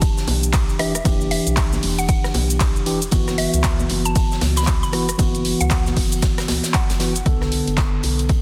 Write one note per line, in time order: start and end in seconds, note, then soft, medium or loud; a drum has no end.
0.00 0.11 E1 loud
0.00 0.76 E3 medium
0.00 0.77 D4 medium
0.00 0.77 G4 loud
0.00 0.14 A5 medium
0.00 kick loud
0.00 closed hi-hat medium
0.00 ride medium
0.00 shaker medium
0.17 snare medium
0.17 shaker soft
0.27 0.71 B1 loud
0.27 closed hi-hat medium
0.27 open hi-hat loud
0.27 high conga medium
0.43 closed hi-hat medium
0.43 shaker medium
0.53 kick loud
0.53 snare loud
0.53 clap loud
0.53 closed hi-hat loud
0.53 closed hi-hat medium
0.53 ride medium
0.53 shaker medium
0.69 1.01 E1 medium
0.69 closed hi-hat soft
0.69 shaker soft
0.79 0.92 E3 medium
0.79 0.92 D4 medium
0.79 0.92 G4 loud
0.79 1.03 E5 medium
0.79 cross-stick medium
0.79 closed hi-hat medium
0.79 open hi-hat medium
0.95 cross-stick medium
0.95 closed hi-hat medium
0.95 shaker medium
1.04 1.40 E1 loud
1.04 2.83 E3 medium
1.04 2.84 D4 medium
1.04 2.84 G4 loud
1.04 kick loud
1.04 closed hi-hat medium
1.04 ride medium
1.04 high conga medium
1.04 shaker medium
1.21 shaker soft
1.31 1.95 E5 medium
1.31 closed hi-hat medium
1.31 open hi-hat loud
1.47 1.78 B1 medium
1.47 closed hi-hat medium
1.47 shaker medium
1.56 kick loud
1.56 snare loud
1.56 clap loud
1.56 closed hi-hat medium
1.56 ride medium
1.56 shaker medium
1.73 snare medium
1.73 high conga medium
1.73 shaker soft
1.83 2.17 E1 loud
1.83 open hi-hat medium
1.98 2.05 F#5 medium
1.98 closed hi-hat medium
1.98 shaker medium
2.09 2.19 F#5 medium
2.09 kick loud
2.09 closed hi-hat medium
2.09 ride medium
2.09 shaker medium
2.24 cross-stick medium
2.24 snare soft
2.24 shaker soft
2.34 2.78 B1 loud
2.34 closed hi-hat medium
2.34 open hi-hat loud
2.34 high conga medium
2.50 closed hi-hat medium
2.50 closed hi-hat soft
2.50 shaker medium
2.60 kick loud
2.60 snare loud
2.60 clap loud
2.60 closed hi-hat loud
2.60 closed hi-hat medium
2.60 ride medium
2.60 shaker medium
2.76 3.08 E1 loud
2.76 shaker soft
2.86 2.99 E3 medium
2.86 2.99 D4 medium
2.86 2.99 G4 loud
2.86 closed hi-hat medium
2.86 open hi-hat medium
3.02 closed hi-hat soft
3.02 closed hi-hat medium
3.02 shaker medium
3.11 3.47 F#1 loud
3.11 4.90 E3 medium
3.11 4.91 B3 medium
3.11 4.91 F#4 loud
3.11 kick loud
3.11 closed hi-hat medium
3.11 ride medium
3.11 high conga medium
3.11 shaker medium
3.27 cross-stick medium
3.27 snare medium
3.27 shaker soft
3.38 3.61 E5 medium
3.38 closed hi-hat medium
3.38 open hi-hat loud
3.54 3.85 C#2 medium
3.54 closed hi-hat soft
3.54 closed hi-hat medium
3.54 shaker medium
3.63 kick loud
3.63 snare loud
3.63 clap loud
3.63 closed hi-hat medium
3.63 ride medium
3.63 shaker medium
3.80 high conga medium
3.80 shaker soft
3.89 4.24 F#1 loud
3.89 closed hi-hat medium
3.89 open hi-hat medium
4.05 4.28 A5 medium
4.05 closed hi-hat medium
4.05 shaker medium
4.15 kick loud
4.15 closed hi-hat medium
4.15 ride medium
4.15 shaker medium
4.31 snare medium
4.31 shaker soft
4.41 4.85 C#2 loud
4.41 snare loud
4.41 closed hi-hat medium
4.41 open hi-hat loud
4.41 high conga medium
4.56 4.80 B5 medium
4.56 snare medium
4.56 closed hi-hat medium
4.56 shaker medium
4.62 snare loud
4.62 closed hi-hat medium
4.67 kick loud
4.67 snare loud
4.67 clap loud
4.67 closed hi-hat medium
4.67 ride medium
4.67 shaker medium
4.83 5.15 F#1 loud
4.83 5.05 B5 medium
4.83 closed hi-hat soft
4.83 shaker soft
4.93 5.05 E3 medium
4.93 5.06 B3 medium
4.93 5.06 F#4 loud
4.93 cross-stick medium
4.93 closed hi-hat medium
4.93 open hi-hat medium
5.09 cross-stick medium
5.09 closed hi-hat medium
5.09 shaker medium
5.18 5.54 F#1 loud
5.18 6.97 E3 medium
5.18 6.98 B3 medium
5.18 6.98 F#4 loud
5.18 kick loud
5.18 closed hi-hat medium
5.18 ride medium
5.18 high conga medium
5.18 shaker medium
5.35 closed hi-hat soft
5.35 shaker soft
5.45 closed hi-hat medium
5.45 open hi-hat loud
5.61 5.92 C#2 medium
5.61 5.83 F#5 medium
5.61 closed hi-hat medium
5.61 shaker medium
5.70 kick loud
5.70 snare loud
5.70 clap loud
5.70 closed hi-hat medium
5.70 ride medium
5.70 shaker medium
5.86 snare medium
5.86 high conga medium
5.86 shaker soft
5.97 6.50 F#1 loud
5.97 kick medium
5.97 open hi-hat medium
6.12 closed hi-hat medium
6.12 shaker medium
6.22 kick loud
6.22 snare loud
6.22 closed hi-hat medium
6.22 ride medium
6.22 shaker medium
6.38 cross-stick medium
6.38 snare loud
6.38 closed hi-hat soft
6.38 closed hi-hat medium
6.38 shaker soft
6.48 6.60 C#2 medium
6.48 snare loud
6.48 closed hi-hat medium
6.48 open hi-hat loud
6.48 high conga medium
6.64 snare loud
6.64 closed hi-hat medium
6.64 shaker medium
6.74 7.16 F#5 medium
6.74 kick loud
6.74 snare loud
6.74 clap loud
6.74 closed hi-hat medium
6.74 ride medium
6.74 shaker medium
6.90 7.21 F#1 medium
6.90 snare loud
6.90 closed hi-hat soft
6.90 closed hi-hat medium
6.90 shaker soft
7.00 7.12 E3 medium
7.00 7.13 B3 medium
7.00 7.13 F#4 loud
7.00 snare loud
7.00 closed hi-hat medium
7.00 open hi-hat medium
7.15 closed hi-hat soft
7.15 closed hi-hat medium
7.15 shaker medium
7.25 7.61 B1 loud
7.25 8.42 D3 medium
7.25 8.42 B3 medium
7.25 8.42 A4 loud
7.25 kick loud
7.25 closed hi-hat medium
7.41 cross-stick medium
7.41 snare medium
7.52 closed hi-hat medium
7.52 open hi-hat loud
7.67 7.99 F#1 medium
7.67 closed hi-hat soft
7.67 closed hi-hat medium
7.77 kick loud
7.77 snare loud
7.77 clap loud
7.77 closed hi-hat medium
8.03 8.38 B1 loud
8.03 closed hi-hat medium
8.03 open hi-hat medium
8.19 closed hi-hat medium
8.19 closed hi-hat soft
8.29 kick loud
8.29 closed hi-hat medium